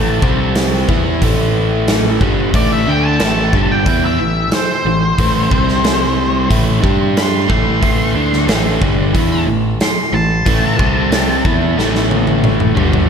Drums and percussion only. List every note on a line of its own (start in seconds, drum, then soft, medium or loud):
0.22 kick loud
0.55 snare loud
0.55 open hi-hat medium
0.89 kick medium
1.22 kick medium
1.22 open hi-hat soft
1.88 snare medium
1.88 open hi-hat soft
2.21 kick medium
2.54 kick loud
2.54 open hi-hat soft
3.20 snare loud
3.20 open hi-hat soft
3.53 kick medium
3.86 kick medium
3.86 open hi-hat soft
4.52 snare loud
4.52 open hi-hat soft
5.18 kick loud
5.18 open hi-hat medium
5.51 kick loud
5.69 snare soft
5.84 snare loud
5.84 open hi-hat soft
6.51 kick medium
6.51 open hi-hat soft
6.84 kick loud
7.17 snare loud
7.17 open hi-hat soft
7.50 kick medium
7.83 kick loud
7.83 open hi-hat medium
8.33 snare soft
8.48 snare loud
8.48 open hi-hat soft
8.82 kick loud
9.15 kick medium
9.15 open hi-hat soft
9.81 snare loud
9.81 open hi-hat soft
10.46 kick loud
10.46 open hi-hat soft
10.79 kick loud
11.12 snare loud
11.12 open hi-hat medium
11.45 kick medium
11.79 snare medium
11.95 snare soft
12.11 high tom medium
12.27 high tom medium
12.44 mid tom medium
12.60 mid tom medium
12.77 floor tom medium
12.93 floor tom medium